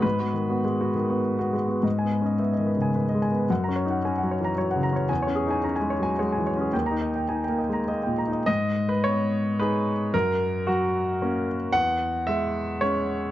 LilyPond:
<<
  \new Staff \with { instrumentName = "Grand piano" } { \time 3/4 \key gis \minor \tempo 4 = 110 b'2~ b'8 r8 | dis''16 gis''16 b'16 dis''16 e''16 dis''16 b'16 gis''16 b'16 dis''16 gis''16 b'16 | fis''16 ais''16 cis''16 fis''16 gis''16 fis''16 cis''16 ais''16 cis''16 fis''16 ais''16 cis''16 | gis''16 cis''16 gis'16 gis''16 ais''16 gis''16 cis''16 gis''16 cis''16 gis''16 cis''16 gis'16 |
g''16 ais''16 dis''16 g''16 gis''16 g''16 dis''16 ais''16 dis''16 g''16 ais''16 dis''16 | dis''8. b'16 cis''4 b'4 | ais'4 fis'4. r8 | fis''4 e''4 cis''4 | }
  \new Staff \with { instrumentName = "Grand piano" } { \time 3/4 \key gis \minor gis,16 <b fis'>16 dis16 <b fis'>16 gis16 <b fis'>16 dis16 <b fis'>8 <b fis'>16 gis16 <b fis'>16 | \tuplet 3/2 { gis,8 b8 cis'8 b8 dis8 cis8 dis8 gis8 b8 } | \tuplet 3/2 { fis,8 cis'8 dis'8 cis'8 fis8 e8 fis8 cis8 cis'8 } | \tuplet 3/2 { e,8 cis'8 dis'8 cis'8 gis8 fis8 gis8 e8 cis'8 } |
\tuplet 3/2 { dis,8 dis'4 dis'8 ais8 gis8 ais8 ais,8 dis'8 } | gis,4 b4 <dis' gis'>4 | fis,4 fis4 <ais cis'>4 | e,4 gis4 <gis cis'>4 | }
>>